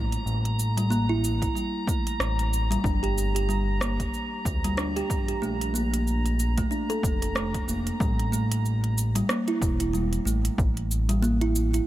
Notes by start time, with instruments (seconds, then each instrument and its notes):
Already playing: analog synth bass A1, kalimba A3, synth texture A#5
0.12 closed hi-hat, shaker
0.26 analog synth bass A1, shaker
0.45 closed hi-hat
0.59 shaker
0.77 kalimba G3, closed hi-hat, shaker
0.90 kalimba A#3, shaker
1.09 kalimba E4
1.24 shaker
1.42 kalimba E4, kick, closed hi-hat, shaker
1.55 kalimba G3, shaker
1.87 kalimba A3, kick, shaker
2.07 closed hi-hat, shaker
2.20 analog synth bass A1, cross-stick, shaker
2.39 closed hi-hat, shaker
2.53 shaker
2.71 kalimba G3, closed hi-hat, shaker
2.84 analog synth bass G1, kalimba D4, kick, shaker
3.03 kalimba G4, closed hi-hat
3.18 shaker
3.35 kalimba G4, closed hi-hat, shaker
3.49 kalimba G3, shaker
3.81 kalimba A#3, cross-stick, shaker
4.00 kick, closed hi-hat, shaker
4.14 shaker
4.45 analog synth bass D2, kick, shaker
4.64 kalimba G3, closed hi-hat, shaker
4.77 kalimba D4, cross-stick, shaker
4.96 kalimba G4, closed hi-hat, shaker
5.10 analog synth bass G1, kick, shaker
5.28 kalimba G4, closed hi-hat, shaker
5.42 analog synth bass A#1, kalimba A3, shaker
5.61 closed hi-hat, shaker
5.74 kalimba A#3, shaker
5.94 closed hi-hat, shaker
6.07 shaker
6.26 closed hi-hat, shaker
6.39 shaker
6.58 kalimba A3, kick, closed hi-hat, shaker
6.71 kalimba D4, shaker
6.90 kalimba A4, closed hi-hat, shaker
7.03 analog synth bass F1, kick, shaker
7.22 kalimba A4, closed hi-hat, shaker
7.35 kalimba A3, cross-stick, shaker
7.54 kick, closed hi-hat, shaker
7.67 analog synth bass F1, kalimba A#3, shaker
7.87 closed hi-hat, shaker
8.00 analog synth bass A1, kalimba G3, kick, shaker
8.19 closed hi-hat
8.32 kalimba A3, shaker
8.52 closed hi-hat, shaker
8.66 shaker
8.84 closed hi-hat
8.98 shaker
9.15 kalimba G3, closed hi-hat, shaker
9.29 kalimba A#3, cross-stick, shaker
9.48 kalimba E4, closed hi-hat
9.62 analog synth bass E1, kick, shaker
9.80 kalimba E4, closed hi-hat, shaker
9.93 kalimba G3, shaker
10.13 closed hi-hat, shaker
10.25 analog synth bass A1, kalimba A3, shaker
10.45 closed hi-hat, shaker
10.58 analog synth bass A1, kick, shaker
10.77 closed hi-hat
10.91 shaker
11.09 kalimba G3, closed hi-hat, shaker
11.23 kalimba A#3, shaker
11.41 kalimba E4, closed hi-hat
11.55 shaker
11.74 kalimba E4, closed hi-hat, shaker